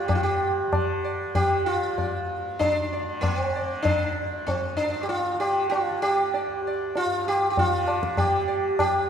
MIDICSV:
0, 0, Header, 1, 4, 480
1, 0, Start_track
1, 0, Tempo, 627615
1, 68, Time_signature, 4, 2, 24, 8
1, 3427, Tempo, 615385
1, 7026, End_track
2, 0, Start_track
2, 0, Title_t, "Sitar"
2, 0, Program_c, 0, 104
2, 62, Note_on_c, 0, 67, 73
2, 112, Note_off_c, 0, 67, 0
2, 116, Note_on_c, 0, 65, 62
2, 168, Note_off_c, 0, 65, 0
2, 177, Note_on_c, 0, 67, 73
2, 567, Note_on_c, 0, 74, 34
2, 766, Note_off_c, 0, 67, 0
2, 784, Note_off_c, 0, 74, 0
2, 798, Note_on_c, 0, 74, 35
2, 1020, Note_off_c, 0, 74, 0
2, 1033, Note_on_c, 0, 67, 91
2, 1268, Note_off_c, 0, 67, 0
2, 1271, Note_on_c, 0, 65, 84
2, 1515, Note_on_c, 0, 74, 35
2, 1738, Note_off_c, 0, 74, 0
2, 1983, Note_on_c, 0, 62, 81
2, 2014, Note_off_c, 0, 65, 0
2, 2239, Note_on_c, 0, 74, 37
2, 2452, Note_off_c, 0, 62, 0
2, 2455, Note_on_c, 0, 58, 76
2, 2459, Note_off_c, 0, 74, 0
2, 2608, Note_off_c, 0, 58, 0
2, 2608, Note_on_c, 0, 60, 76
2, 2719, Note_on_c, 0, 74, 36
2, 2922, Note_off_c, 0, 60, 0
2, 2925, Note_on_c, 0, 62, 85
2, 2937, Note_off_c, 0, 74, 0
2, 3412, Note_off_c, 0, 62, 0
2, 3416, Note_on_c, 0, 60, 71
2, 3647, Note_off_c, 0, 60, 0
2, 3650, Note_on_c, 0, 62, 76
2, 3854, Note_on_c, 0, 67, 61
2, 3856, Note_off_c, 0, 62, 0
2, 3899, Note_off_c, 0, 67, 0
2, 3902, Note_on_c, 0, 65, 80
2, 4140, Note_off_c, 0, 65, 0
2, 4143, Note_on_c, 0, 67, 82
2, 4371, Note_off_c, 0, 67, 0
2, 4374, Note_on_c, 0, 65, 79
2, 4625, Note_off_c, 0, 65, 0
2, 4628, Note_on_c, 0, 67, 86
2, 4881, Note_on_c, 0, 74, 37
2, 5081, Note_off_c, 0, 67, 0
2, 5102, Note_off_c, 0, 74, 0
2, 5135, Note_on_c, 0, 74, 35
2, 5349, Note_off_c, 0, 74, 0
2, 5367, Note_on_c, 0, 65, 93
2, 5585, Note_off_c, 0, 65, 0
2, 5610, Note_on_c, 0, 67, 91
2, 5775, Note_off_c, 0, 67, 0
2, 5784, Note_on_c, 0, 67, 70
2, 5835, Note_off_c, 0, 67, 0
2, 5852, Note_on_c, 0, 65, 86
2, 6078, Note_on_c, 0, 74, 39
2, 6298, Note_off_c, 0, 74, 0
2, 6309, Note_off_c, 0, 65, 0
2, 6312, Note_on_c, 0, 67, 89
2, 6544, Note_on_c, 0, 74, 36
2, 6758, Note_off_c, 0, 67, 0
2, 6769, Note_off_c, 0, 74, 0
2, 6795, Note_on_c, 0, 67, 93
2, 7026, Note_off_c, 0, 67, 0
2, 7026, End_track
3, 0, Start_track
3, 0, Title_t, "Tanpura"
3, 0, Program_c, 1, 104
3, 0, Note_on_c, 1, 38, 54
3, 0, Note_on_c, 1, 43, 53
3, 0, Note_on_c, 1, 50, 53
3, 67, Note_off_c, 1, 43, 0
3, 67, Note_on_c, 1, 43, 54
3, 504, Note_off_c, 1, 50, 0
3, 504, Note_on_c, 1, 50, 57
3, 956, Note_off_c, 1, 50, 0
3, 956, Note_on_c, 1, 50, 57
3, 1413, Note_off_c, 1, 38, 0
3, 1416, Note_on_c, 1, 38, 59
3, 1849, Note_off_c, 1, 43, 0
3, 1849, Note_on_c, 1, 43, 53
3, 2304, Note_off_c, 1, 50, 0
3, 2304, Note_on_c, 1, 50, 60
3, 2755, Note_off_c, 1, 50, 0
3, 2755, Note_on_c, 1, 50, 62
3, 3193, Note_off_c, 1, 38, 0
3, 3196, Note_on_c, 1, 38, 58
3, 3630, Note_off_c, 1, 43, 0
3, 3633, Note_on_c, 1, 43, 60
3, 4092, Note_off_c, 1, 50, 0
3, 4092, Note_on_c, 1, 50, 58
3, 4537, Note_off_c, 1, 50, 0
3, 4537, Note_on_c, 1, 50, 55
3, 4974, Note_off_c, 1, 38, 0
3, 4977, Note_on_c, 1, 38, 61
3, 5425, Note_off_c, 1, 43, 0
3, 5428, Note_on_c, 1, 43, 58
3, 5867, Note_off_c, 1, 50, 0
3, 5867, Note_on_c, 1, 50, 58
3, 6328, Note_off_c, 1, 50, 0
3, 6328, Note_on_c, 1, 50, 61
3, 6769, Note_off_c, 1, 38, 0
3, 6772, Note_on_c, 1, 38, 58
3, 7026, Note_off_c, 1, 38, 0
3, 7026, Note_off_c, 1, 43, 0
3, 7026, Note_off_c, 1, 50, 0
3, 7026, End_track
4, 0, Start_track
4, 0, Title_t, "Tabla"
4, 70, Note_on_c, 9, 63, 95
4, 70, Note_on_c, 9, 64, 82
4, 147, Note_off_c, 9, 63, 0
4, 147, Note_off_c, 9, 64, 0
4, 555, Note_on_c, 9, 60, 73
4, 555, Note_on_c, 9, 64, 63
4, 632, Note_off_c, 9, 60, 0
4, 632, Note_off_c, 9, 64, 0
4, 1032, Note_on_c, 9, 63, 80
4, 1032, Note_on_c, 9, 64, 71
4, 1109, Note_off_c, 9, 63, 0
4, 1109, Note_off_c, 9, 64, 0
4, 1514, Note_on_c, 9, 63, 74
4, 1514, Note_on_c, 9, 64, 67
4, 1590, Note_off_c, 9, 63, 0
4, 1590, Note_off_c, 9, 64, 0
4, 1994, Note_on_c, 9, 63, 74
4, 1994, Note_on_c, 9, 64, 70
4, 2071, Note_off_c, 9, 63, 0
4, 2071, Note_off_c, 9, 64, 0
4, 2470, Note_on_c, 9, 60, 76
4, 2470, Note_on_c, 9, 64, 67
4, 2546, Note_off_c, 9, 60, 0
4, 2546, Note_off_c, 9, 64, 0
4, 2945, Note_on_c, 9, 63, 75
4, 2945, Note_on_c, 9, 64, 70
4, 3021, Note_off_c, 9, 63, 0
4, 3021, Note_off_c, 9, 64, 0
4, 3425, Note_on_c, 9, 63, 76
4, 3425, Note_on_c, 9, 64, 68
4, 3503, Note_off_c, 9, 63, 0
4, 3503, Note_off_c, 9, 64, 0
4, 3901, Note_on_c, 9, 63, 70
4, 3979, Note_off_c, 9, 63, 0
4, 4151, Note_on_c, 9, 60, 54
4, 4229, Note_off_c, 9, 60, 0
4, 4395, Note_on_c, 9, 63, 73
4, 4473, Note_off_c, 9, 63, 0
4, 4631, Note_on_c, 9, 60, 55
4, 4709, Note_off_c, 9, 60, 0
4, 4877, Note_on_c, 9, 63, 75
4, 4955, Note_off_c, 9, 63, 0
4, 5357, Note_on_c, 9, 63, 76
4, 5435, Note_off_c, 9, 63, 0
4, 5839, Note_on_c, 9, 63, 76
4, 5839, Note_on_c, 9, 64, 70
4, 5917, Note_off_c, 9, 63, 0
4, 5917, Note_off_c, 9, 64, 0
4, 6075, Note_on_c, 9, 60, 57
4, 6153, Note_off_c, 9, 60, 0
4, 6195, Note_on_c, 9, 37, 56
4, 6273, Note_off_c, 9, 37, 0
4, 6308, Note_on_c, 9, 60, 68
4, 6308, Note_on_c, 9, 64, 64
4, 6386, Note_off_c, 9, 60, 0
4, 6386, Note_off_c, 9, 64, 0
4, 6789, Note_on_c, 9, 60, 77
4, 6789, Note_on_c, 9, 64, 69
4, 6867, Note_off_c, 9, 60, 0
4, 6867, Note_off_c, 9, 64, 0
4, 7026, End_track
0, 0, End_of_file